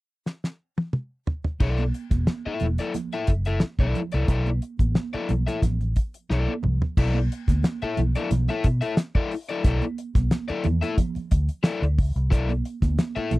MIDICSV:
0, 0, Header, 1, 5, 480
1, 0, Start_track
1, 0, Key_signature, 2, "minor"
1, 0, Tempo, 668896
1, 1151, Time_signature, 4, 2, 24, 8
1, 9612, End_track
2, 0, Start_track
2, 0, Title_t, "Overdriven electric guitar"
2, 0, Program_c, 0, 29
2, 1150, Note_on_c, 0, 64, 64
2, 1157, Note_on_c, 0, 69, 80
2, 1160, Note_on_c, 0, 74, 84
2, 1301, Note_off_c, 0, 64, 0
2, 1305, Note_off_c, 0, 69, 0
2, 1306, Note_off_c, 0, 74, 0
2, 1765, Note_on_c, 0, 76, 64
2, 1771, Note_on_c, 0, 69, 60
2, 1776, Note_on_c, 0, 64, 51
2, 1901, Note_off_c, 0, 76, 0
2, 1904, Note_off_c, 0, 69, 0
2, 1907, Note_off_c, 0, 64, 0
2, 2003, Note_on_c, 0, 74, 57
2, 2011, Note_on_c, 0, 69, 58
2, 2013, Note_on_c, 0, 64, 44
2, 2094, Note_off_c, 0, 74, 0
2, 2098, Note_off_c, 0, 69, 0
2, 2099, Note_off_c, 0, 64, 0
2, 2246, Note_on_c, 0, 76, 70
2, 2252, Note_on_c, 0, 69, 63
2, 2254, Note_on_c, 0, 64, 62
2, 2362, Note_off_c, 0, 76, 0
2, 2365, Note_off_c, 0, 69, 0
2, 2366, Note_off_c, 0, 64, 0
2, 2485, Note_on_c, 0, 76, 58
2, 2491, Note_on_c, 0, 69, 64
2, 2494, Note_on_c, 0, 64, 56
2, 2575, Note_off_c, 0, 76, 0
2, 2579, Note_off_c, 0, 69, 0
2, 2580, Note_off_c, 0, 64, 0
2, 2727, Note_on_c, 0, 74, 77
2, 2733, Note_on_c, 0, 69, 75
2, 2738, Note_on_c, 0, 64, 65
2, 2864, Note_off_c, 0, 74, 0
2, 2867, Note_off_c, 0, 69, 0
2, 2870, Note_off_c, 0, 64, 0
2, 2960, Note_on_c, 0, 74, 58
2, 2971, Note_on_c, 0, 69, 53
2, 2977, Note_on_c, 0, 64, 52
2, 3054, Note_off_c, 0, 74, 0
2, 3060, Note_off_c, 0, 69, 0
2, 3062, Note_off_c, 0, 64, 0
2, 3082, Note_on_c, 0, 64, 91
2, 3087, Note_on_c, 0, 69, 95
2, 3096, Note_on_c, 0, 74, 97
2, 3211, Note_off_c, 0, 64, 0
2, 3214, Note_off_c, 0, 69, 0
2, 3218, Note_off_c, 0, 74, 0
2, 3684, Note_on_c, 0, 74, 65
2, 3692, Note_on_c, 0, 69, 62
2, 3697, Note_on_c, 0, 64, 54
2, 3803, Note_off_c, 0, 74, 0
2, 3807, Note_off_c, 0, 69, 0
2, 3809, Note_off_c, 0, 64, 0
2, 3923, Note_on_c, 0, 76, 57
2, 3929, Note_on_c, 0, 69, 54
2, 3934, Note_on_c, 0, 64, 51
2, 4017, Note_off_c, 0, 76, 0
2, 4020, Note_off_c, 0, 69, 0
2, 4022, Note_off_c, 0, 64, 0
2, 4520, Note_on_c, 0, 64, 74
2, 4530, Note_on_c, 0, 69, 72
2, 4535, Note_on_c, 0, 74, 70
2, 4671, Note_off_c, 0, 64, 0
2, 4676, Note_off_c, 0, 69, 0
2, 4678, Note_off_c, 0, 74, 0
2, 5009, Note_on_c, 0, 64, 93
2, 5014, Note_on_c, 0, 69, 86
2, 5019, Note_on_c, 0, 74, 103
2, 5136, Note_off_c, 0, 64, 0
2, 5139, Note_off_c, 0, 69, 0
2, 5142, Note_off_c, 0, 74, 0
2, 5614, Note_on_c, 0, 76, 63
2, 5620, Note_on_c, 0, 69, 61
2, 5628, Note_on_c, 0, 64, 59
2, 5729, Note_off_c, 0, 76, 0
2, 5732, Note_off_c, 0, 69, 0
2, 5736, Note_off_c, 0, 64, 0
2, 5854, Note_on_c, 0, 74, 62
2, 5859, Note_on_c, 0, 69, 59
2, 5866, Note_on_c, 0, 64, 49
2, 5943, Note_off_c, 0, 74, 0
2, 5945, Note_off_c, 0, 69, 0
2, 5949, Note_off_c, 0, 64, 0
2, 6092, Note_on_c, 0, 76, 72
2, 6100, Note_on_c, 0, 69, 66
2, 6102, Note_on_c, 0, 64, 64
2, 6207, Note_off_c, 0, 76, 0
2, 6211, Note_off_c, 0, 69, 0
2, 6213, Note_off_c, 0, 64, 0
2, 6322, Note_on_c, 0, 76, 72
2, 6330, Note_on_c, 0, 69, 59
2, 6333, Note_on_c, 0, 64, 54
2, 6417, Note_off_c, 0, 76, 0
2, 6421, Note_off_c, 0, 69, 0
2, 6422, Note_off_c, 0, 64, 0
2, 6567, Note_on_c, 0, 74, 96
2, 6575, Note_on_c, 0, 69, 82
2, 6581, Note_on_c, 0, 64, 74
2, 6685, Note_off_c, 0, 74, 0
2, 6689, Note_off_c, 0, 69, 0
2, 6692, Note_off_c, 0, 64, 0
2, 6810, Note_on_c, 0, 74, 64
2, 6818, Note_on_c, 0, 64, 49
2, 6818, Note_on_c, 0, 69, 56
2, 6900, Note_off_c, 0, 74, 0
2, 6904, Note_off_c, 0, 64, 0
2, 6904, Note_off_c, 0, 69, 0
2, 6925, Note_on_c, 0, 64, 86
2, 6932, Note_on_c, 0, 69, 91
2, 6936, Note_on_c, 0, 74, 88
2, 7054, Note_off_c, 0, 64, 0
2, 7057, Note_off_c, 0, 69, 0
2, 7059, Note_off_c, 0, 74, 0
2, 7522, Note_on_c, 0, 74, 76
2, 7530, Note_on_c, 0, 69, 70
2, 7534, Note_on_c, 0, 64, 62
2, 7641, Note_off_c, 0, 74, 0
2, 7645, Note_off_c, 0, 69, 0
2, 7647, Note_off_c, 0, 64, 0
2, 7760, Note_on_c, 0, 76, 66
2, 7767, Note_on_c, 0, 69, 55
2, 7771, Note_on_c, 0, 64, 54
2, 7854, Note_off_c, 0, 76, 0
2, 7858, Note_off_c, 0, 69, 0
2, 7859, Note_off_c, 0, 64, 0
2, 8347, Note_on_c, 0, 64, 80
2, 8351, Note_on_c, 0, 69, 85
2, 8359, Note_on_c, 0, 74, 83
2, 8482, Note_off_c, 0, 64, 0
2, 8484, Note_off_c, 0, 69, 0
2, 8488, Note_off_c, 0, 74, 0
2, 8831, Note_on_c, 0, 64, 82
2, 8837, Note_on_c, 0, 69, 78
2, 8846, Note_on_c, 0, 74, 82
2, 8963, Note_off_c, 0, 64, 0
2, 8966, Note_off_c, 0, 69, 0
2, 8970, Note_off_c, 0, 74, 0
2, 9441, Note_on_c, 0, 76, 72
2, 9448, Note_on_c, 0, 69, 62
2, 9455, Note_on_c, 0, 64, 65
2, 9556, Note_off_c, 0, 76, 0
2, 9560, Note_off_c, 0, 69, 0
2, 9563, Note_off_c, 0, 64, 0
2, 9612, End_track
3, 0, Start_track
3, 0, Title_t, "Fingered electric bass"
3, 0, Program_c, 1, 33
3, 1153, Note_on_c, 1, 35, 89
3, 1367, Note_off_c, 1, 35, 0
3, 1518, Note_on_c, 1, 28, 82
3, 1620, Note_off_c, 1, 28, 0
3, 1875, Note_on_c, 1, 28, 75
3, 1989, Note_off_c, 1, 28, 0
3, 2356, Note_on_c, 1, 30, 73
3, 2571, Note_off_c, 1, 30, 0
3, 2720, Note_on_c, 1, 35, 80
3, 2823, Note_off_c, 1, 35, 0
3, 2970, Note_on_c, 1, 36, 80
3, 3069, Note_off_c, 1, 36, 0
3, 3073, Note_on_c, 1, 35, 94
3, 3291, Note_off_c, 1, 35, 0
3, 3442, Note_on_c, 1, 33, 78
3, 3545, Note_off_c, 1, 33, 0
3, 3803, Note_on_c, 1, 35, 89
3, 3916, Note_off_c, 1, 35, 0
3, 4036, Note_on_c, 1, 33, 93
3, 4253, Note_off_c, 1, 33, 0
3, 4525, Note_on_c, 1, 35, 80
3, 4637, Note_off_c, 1, 35, 0
3, 4765, Note_on_c, 1, 36, 77
3, 4877, Note_off_c, 1, 36, 0
3, 5006, Note_on_c, 1, 35, 108
3, 5219, Note_off_c, 1, 35, 0
3, 5369, Note_on_c, 1, 38, 82
3, 5470, Note_off_c, 1, 38, 0
3, 5727, Note_on_c, 1, 35, 88
3, 5838, Note_off_c, 1, 35, 0
3, 5965, Note_on_c, 1, 35, 104
3, 6077, Note_off_c, 1, 35, 0
3, 6206, Note_on_c, 1, 47, 94
3, 6318, Note_off_c, 1, 47, 0
3, 6924, Note_on_c, 1, 35, 96
3, 7036, Note_off_c, 1, 35, 0
3, 7286, Note_on_c, 1, 35, 88
3, 7387, Note_off_c, 1, 35, 0
3, 7644, Note_on_c, 1, 40, 83
3, 7755, Note_off_c, 1, 40, 0
3, 8124, Note_on_c, 1, 38, 86
3, 8235, Note_off_c, 1, 38, 0
3, 8484, Note_on_c, 1, 38, 90
3, 8603, Note_off_c, 1, 38, 0
3, 8603, Note_on_c, 1, 37, 87
3, 8713, Note_off_c, 1, 37, 0
3, 8724, Note_on_c, 1, 36, 80
3, 8840, Note_off_c, 1, 36, 0
3, 8840, Note_on_c, 1, 35, 96
3, 9051, Note_off_c, 1, 35, 0
3, 9201, Note_on_c, 1, 38, 88
3, 9301, Note_off_c, 1, 38, 0
3, 9561, Note_on_c, 1, 35, 80
3, 9612, Note_off_c, 1, 35, 0
3, 9612, End_track
4, 0, Start_track
4, 0, Title_t, "Muted fingered electric bass strokes"
4, 1767, Note_on_c, 9, 29, 46
4, 1839, Note_off_c, 9, 29, 0
4, 2602, Note_on_c, 9, 29, 44
4, 2674, Note_off_c, 9, 29, 0
4, 3690, Note_on_c, 9, 29, 43
4, 3762, Note_off_c, 9, 29, 0
4, 5616, Note_on_c, 9, 29, 45
4, 5687, Note_off_c, 9, 29, 0
4, 7533, Note_on_c, 9, 29, 46
4, 7604, Note_off_c, 9, 29, 0
4, 8011, Note_on_c, 9, 29, 46
4, 8082, Note_off_c, 9, 29, 0
4, 9446, Note_on_c, 9, 29, 49
4, 9518, Note_off_c, 9, 29, 0
4, 9612, End_track
5, 0, Start_track
5, 0, Title_t, "Drums"
5, 189, Note_on_c, 9, 38, 52
5, 260, Note_off_c, 9, 38, 0
5, 315, Note_on_c, 9, 38, 59
5, 387, Note_off_c, 9, 38, 0
5, 558, Note_on_c, 9, 48, 62
5, 630, Note_off_c, 9, 48, 0
5, 668, Note_on_c, 9, 47, 75
5, 740, Note_off_c, 9, 47, 0
5, 913, Note_on_c, 9, 43, 83
5, 984, Note_off_c, 9, 43, 0
5, 1037, Note_on_c, 9, 43, 87
5, 1108, Note_off_c, 9, 43, 0
5, 1149, Note_on_c, 9, 49, 79
5, 1151, Note_on_c, 9, 36, 94
5, 1221, Note_off_c, 9, 49, 0
5, 1223, Note_off_c, 9, 36, 0
5, 1276, Note_on_c, 9, 42, 30
5, 1281, Note_on_c, 9, 63, 64
5, 1348, Note_off_c, 9, 42, 0
5, 1353, Note_off_c, 9, 63, 0
5, 1394, Note_on_c, 9, 42, 67
5, 1466, Note_off_c, 9, 42, 0
5, 1510, Note_on_c, 9, 38, 31
5, 1515, Note_on_c, 9, 36, 84
5, 1516, Note_on_c, 9, 42, 52
5, 1520, Note_on_c, 9, 63, 78
5, 1582, Note_off_c, 9, 38, 0
5, 1586, Note_off_c, 9, 36, 0
5, 1587, Note_off_c, 9, 42, 0
5, 1592, Note_off_c, 9, 63, 0
5, 1629, Note_on_c, 9, 38, 116
5, 1630, Note_on_c, 9, 63, 67
5, 1701, Note_off_c, 9, 38, 0
5, 1702, Note_off_c, 9, 63, 0
5, 1864, Note_on_c, 9, 42, 64
5, 1871, Note_on_c, 9, 63, 68
5, 1871, Note_on_c, 9, 64, 70
5, 1936, Note_off_c, 9, 42, 0
5, 1943, Note_off_c, 9, 63, 0
5, 1943, Note_off_c, 9, 64, 0
5, 1997, Note_on_c, 9, 42, 60
5, 2069, Note_off_c, 9, 42, 0
5, 2111, Note_on_c, 9, 42, 81
5, 2115, Note_on_c, 9, 38, 27
5, 2115, Note_on_c, 9, 62, 31
5, 2115, Note_on_c, 9, 63, 64
5, 2115, Note_on_c, 9, 64, 67
5, 2183, Note_off_c, 9, 42, 0
5, 2187, Note_off_c, 9, 38, 0
5, 2187, Note_off_c, 9, 62, 0
5, 2187, Note_off_c, 9, 63, 0
5, 2187, Note_off_c, 9, 64, 0
5, 2242, Note_on_c, 9, 42, 36
5, 2246, Note_on_c, 9, 62, 35
5, 2314, Note_off_c, 9, 42, 0
5, 2318, Note_off_c, 9, 62, 0
5, 2349, Note_on_c, 9, 42, 82
5, 2354, Note_on_c, 9, 36, 71
5, 2420, Note_off_c, 9, 42, 0
5, 2426, Note_off_c, 9, 36, 0
5, 2477, Note_on_c, 9, 42, 50
5, 2549, Note_off_c, 9, 42, 0
5, 2584, Note_on_c, 9, 38, 102
5, 2588, Note_on_c, 9, 62, 35
5, 2655, Note_off_c, 9, 38, 0
5, 2660, Note_off_c, 9, 62, 0
5, 2718, Note_on_c, 9, 36, 86
5, 2720, Note_on_c, 9, 63, 52
5, 2723, Note_on_c, 9, 42, 29
5, 2789, Note_off_c, 9, 36, 0
5, 2792, Note_off_c, 9, 63, 0
5, 2794, Note_off_c, 9, 42, 0
5, 2834, Note_on_c, 9, 64, 68
5, 2837, Note_on_c, 9, 42, 59
5, 2906, Note_off_c, 9, 64, 0
5, 2908, Note_off_c, 9, 42, 0
5, 2954, Note_on_c, 9, 42, 53
5, 3026, Note_off_c, 9, 42, 0
5, 3073, Note_on_c, 9, 42, 83
5, 3074, Note_on_c, 9, 36, 97
5, 3080, Note_on_c, 9, 62, 33
5, 3145, Note_off_c, 9, 42, 0
5, 3146, Note_off_c, 9, 36, 0
5, 3152, Note_off_c, 9, 62, 0
5, 3202, Note_on_c, 9, 42, 31
5, 3203, Note_on_c, 9, 63, 70
5, 3274, Note_off_c, 9, 42, 0
5, 3275, Note_off_c, 9, 63, 0
5, 3316, Note_on_c, 9, 42, 72
5, 3387, Note_off_c, 9, 42, 0
5, 3440, Note_on_c, 9, 36, 78
5, 3445, Note_on_c, 9, 42, 53
5, 3447, Note_on_c, 9, 63, 73
5, 3511, Note_off_c, 9, 36, 0
5, 3517, Note_off_c, 9, 42, 0
5, 3519, Note_off_c, 9, 63, 0
5, 3554, Note_on_c, 9, 38, 102
5, 3554, Note_on_c, 9, 62, 34
5, 3554, Note_on_c, 9, 63, 79
5, 3625, Note_off_c, 9, 38, 0
5, 3626, Note_off_c, 9, 62, 0
5, 3626, Note_off_c, 9, 63, 0
5, 3682, Note_on_c, 9, 42, 30
5, 3754, Note_off_c, 9, 42, 0
5, 3796, Note_on_c, 9, 42, 68
5, 3797, Note_on_c, 9, 63, 70
5, 3797, Note_on_c, 9, 64, 70
5, 3867, Note_off_c, 9, 42, 0
5, 3868, Note_off_c, 9, 63, 0
5, 3868, Note_off_c, 9, 64, 0
5, 3931, Note_on_c, 9, 42, 52
5, 4003, Note_off_c, 9, 42, 0
5, 4036, Note_on_c, 9, 36, 76
5, 4040, Note_on_c, 9, 42, 81
5, 4044, Note_on_c, 9, 38, 31
5, 4045, Note_on_c, 9, 63, 66
5, 4045, Note_on_c, 9, 64, 73
5, 4107, Note_off_c, 9, 36, 0
5, 4112, Note_off_c, 9, 42, 0
5, 4116, Note_off_c, 9, 38, 0
5, 4117, Note_off_c, 9, 63, 0
5, 4117, Note_off_c, 9, 64, 0
5, 4167, Note_on_c, 9, 62, 35
5, 4169, Note_on_c, 9, 42, 35
5, 4238, Note_off_c, 9, 62, 0
5, 4241, Note_off_c, 9, 42, 0
5, 4276, Note_on_c, 9, 42, 77
5, 4281, Note_on_c, 9, 36, 73
5, 4348, Note_off_c, 9, 42, 0
5, 4352, Note_off_c, 9, 36, 0
5, 4408, Note_on_c, 9, 42, 48
5, 4480, Note_off_c, 9, 42, 0
5, 4523, Note_on_c, 9, 38, 49
5, 4595, Note_off_c, 9, 38, 0
5, 4650, Note_on_c, 9, 62, 32
5, 4650, Note_on_c, 9, 63, 55
5, 4722, Note_off_c, 9, 62, 0
5, 4722, Note_off_c, 9, 63, 0
5, 4756, Note_on_c, 9, 64, 79
5, 4762, Note_on_c, 9, 45, 66
5, 4828, Note_off_c, 9, 64, 0
5, 4834, Note_off_c, 9, 45, 0
5, 4892, Note_on_c, 9, 43, 84
5, 4964, Note_off_c, 9, 43, 0
5, 5003, Note_on_c, 9, 36, 98
5, 5005, Note_on_c, 9, 49, 97
5, 5006, Note_on_c, 9, 62, 32
5, 5075, Note_off_c, 9, 36, 0
5, 5077, Note_off_c, 9, 49, 0
5, 5078, Note_off_c, 9, 62, 0
5, 5124, Note_on_c, 9, 62, 31
5, 5124, Note_on_c, 9, 63, 66
5, 5196, Note_off_c, 9, 62, 0
5, 5196, Note_off_c, 9, 63, 0
5, 5252, Note_on_c, 9, 42, 79
5, 5324, Note_off_c, 9, 42, 0
5, 5365, Note_on_c, 9, 63, 79
5, 5367, Note_on_c, 9, 36, 83
5, 5368, Note_on_c, 9, 38, 39
5, 5374, Note_on_c, 9, 42, 61
5, 5437, Note_off_c, 9, 63, 0
5, 5438, Note_off_c, 9, 36, 0
5, 5440, Note_off_c, 9, 38, 0
5, 5446, Note_off_c, 9, 42, 0
5, 5474, Note_on_c, 9, 63, 78
5, 5483, Note_on_c, 9, 42, 73
5, 5484, Note_on_c, 9, 38, 111
5, 5546, Note_off_c, 9, 63, 0
5, 5555, Note_off_c, 9, 42, 0
5, 5556, Note_off_c, 9, 38, 0
5, 5610, Note_on_c, 9, 42, 33
5, 5682, Note_off_c, 9, 42, 0
5, 5721, Note_on_c, 9, 63, 70
5, 5721, Note_on_c, 9, 64, 77
5, 5722, Note_on_c, 9, 42, 77
5, 5793, Note_off_c, 9, 42, 0
5, 5793, Note_off_c, 9, 63, 0
5, 5793, Note_off_c, 9, 64, 0
5, 5851, Note_on_c, 9, 42, 59
5, 5922, Note_off_c, 9, 42, 0
5, 5962, Note_on_c, 9, 42, 82
5, 5964, Note_on_c, 9, 62, 33
5, 5964, Note_on_c, 9, 63, 75
5, 5964, Note_on_c, 9, 64, 71
5, 5966, Note_on_c, 9, 38, 29
5, 6034, Note_off_c, 9, 42, 0
5, 6035, Note_off_c, 9, 62, 0
5, 6035, Note_off_c, 9, 63, 0
5, 6035, Note_off_c, 9, 64, 0
5, 6038, Note_off_c, 9, 38, 0
5, 6085, Note_on_c, 9, 62, 39
5, 6092, Note_on_c, 9, 42, 36
5, 6157, Note_off_c, 9, 62, 0
5, 6164, Note_off_c, 9, 42, 0
5, 6199, Note_on_c, 9, 42, 84
5, 6203, Note_on_c, 9, 36, 79
5, 6271, Note_off_c, 9, 42, 0
5, 6275, Note_off_c, 9, 36, 0
5, 6327, Note_on_c, 9, 42, 56
5, 6399, Note_off_c, 9, 42, 0
5, 6437, Note_on_c, 9, 38, 110
5, 6442, Note_on_c, 9, 62, 33
5, 6443, Note_on_c, 9, 42, 81
5, 6509, Note_off_c, 9, 38, 0
5, 6513, Note_off_c, 9, 62, 0
5, 6515, Note_off_c, 9, 42, 0
5, 6567, Note_on_c, 9, 36, 92
5, 6639, Note_off_c, 9, 36, 0
5, 6684, Note_on_c, 9, 46, 75
5, 6756, Note_off_c, 9, 46, 0
5, 6808, Note_on_c, 9, 42, 49
5, 6880, Note_off_c, 9, 42, 0
5, 6920, Note_on_c, 9, 42, 97
5, 6921, Note_on_c, 9, 36, 100
5, 6922, Note_on_c, 9, 62, 30
5, 6992, Note_off_c, 9, 42, 0
5, 6993, Note_off_c, 9, 36, 0
5, 6994, Note_off_c, 9, 62, 0
5, 7046, Note_on_c, 9, 42, 31
5, 7048, Note_on_c, 9, 63, 67
5, 7118, Note_off_c, 9, 42, 0
5, 7120, Note_off_c, 9, 63, 0
5, 7163, Note_on_c, 9, 42, 74
5, 7235, Note_off_c, 9, 42, 0
5, 7283, Note_on_c, 9, 38, 36
5, 7285, Note_on_c, 9, 36, 91
5, 7288, Note_on_c, 9, 42, 54
5, 7290, Note_on_c, 9, 63, 80
5, 7355, Note_off_c, 9, 38, 0
5, 7356, Note_off_c, 9, 36, 0
5, 7360, Note_off_c, 9, 42, 0
5, 7361, Note_off_c, 9, 63, 0
5, 7399, Note_on_c, 9, 42, 75
5, 7399, Note_on_c, 9, 62, 36
5, 7399, Note_on_c, 9, 63, 76
5, 7400, Note_on_c, 9, 38, 118
5, 7470, Note_off_c, 9, 42, 0
5, 7471, Note_off_c, 9, 38, 0
5, 7471, Note_off_c, 9, 62, 0
5, 7471, Note_off_c, 9, 63, 0
5, 7523, Note_on_c, 9, 42, 35
5, 7534, Note_on_c, 9, 62, 40
5, 7594, Note_off_c, 9, 42, 0
5, 7605, Note_off_c, 9, 62, 0
5, 7634, Note_on_c, 9, 42, 75
5, 7639, Note_on_c, 9, 63, 77
5, 7639, Note_on_c, 9, 64, 70
5, 7705, Note_off_c, 9, 42, 0
5, 7711, Note_off_c, 9, 63, 0
5, 7711, Note_off_c, 9, 64, 0
5, 7768, Note_on_c, 9, 42, 58
5, 7840, Note_off_c, 9, 42, 0
5, 7877, Note_on_c, 9, 36, 80
5, 7879, Note_on_c, 9, 42, 88
5, 7886, Note_on_c, 9, 63, 73
5, 7886, Note_on_c, 9, 64, 76
5, 7949, Note_off_c, 9, 36, 0
5, 7951, Note_off_c, 9, 42, 0
5, 7957, Note_off_c, 9, 63, 0
5, 7957, Note_off_c, 9, 64, 0
5, 8002, Note_on_c, 9, 62, 39
5, 8009, Note_on_c, 9, 42, 38
5, 8074, Note_off_c, 9, 62, 0
5, 8081, Note_off_c, 9, 42, 0
5, 8117, Note_on_c, 9, 42, 89
5, 8121, Note_on_c, 9, 36, 83
5, 8188, Note_off_c, 9, 42, 0
5, 8193, Note_off_c, 9, 36, 0
5, 8243, Note_on_c, 9, 42, 54
5, 8315, Note_off_c, 9, 42, 0
5, 8351, Note_on_c, 9, 38, 112
5, 8356, Note_on_c, 9, 42, 80
5, 8358, Note_on_c, 9, 62, 36
5, 8423, Note_off_c, 9, 38, 0
5, 8428, Note_off_c, 9, 42, 0
5, 8430, Note_off_c, 9, 62, 0
5, 8490, Note_on_c, 9, 42, 32
5, 8562, Note_off_c, 9, 42, 0
5, 8600, Note_on_c, 9, 46, 71
5, 8601, Note_on_c, 9, 36, 96
5, 8672, Note_off_c, 9, 36, 0
5, 8672, Note_off_c, 9, 46, 0
5, 8727, Note_on_c, 9, 42, 48
5, 8798, Note_off_c, 9, 42, 0
5, 8839, Note_on_c, 9, 36, 109
5, 8842, Note_on_c, 9, 42, 101
5, 8911, Note_off_c, 9, 36, 0
5, 8914, Note_off_c, 9, 42, 0
5, 8962, Note_on_c, 9, 62, 31
5, 8962, Note_on_c, 9, 63, 70
5, 8967, Note_on_c, 9, 42, 34
5, 9033, Note_off_c, 9, 62, 0
5, 9033, Note_off_c, 9, 63, 0
5, 9039, Note_off_c, 9, 42, 0
5, 9080, Note_on_c, 9, 42, 74
5, 9152, Note_off_c, 9, 42, 0
5, 9200, Note_on_c, 9, 38, 35
5, 9201, Note_on_c, 9, 36, 80
5, 9202, Note_on_c, 9, 63, 82
5, 9206, Note_on_c, 9, 42, 53
5, 9272, Note_off_c, 9, 36, 0
5, 9272, Note_off_c, 9, 38, 0
5, 9274, Note_off_c, 9, 63, 0
5, 9277, Note_off_c, 9, 42, 0
5, 9315, Note_on_c, 9, 62, 35
5, 9315, Note_on_c, 9, 63, 76
5, 9318, Note_on_c, 9, 42, 72
5, 9319, Note_on_c, 9, 38, 109
5, 9387, Note_off_c, 9, 62, 0
5, 9387, Note_off_c, 9, 63, 0
5, 9390, Note_off_c, 9, 42, 0
5, 9391, Note_off_c, 9, 38, 0
5, 9444, Note_on_c, 9, 42, 34
5, 9516, Note_off_c, 9, 42, 0
5, 9552, Note_on_c, 9, 63, 75
5, 9552, Note_on_c, 9, 64, 69
5, 9553, Note_on_c, 9, 42, 73
5, 9612, Note_off_c, 9, 42, 0
5, 9612, Note_off_c, 9, 63, 0
5, 9612, Note_off_c, 9, 64, 0
5, 9612, End_track
0, 0, End_of_file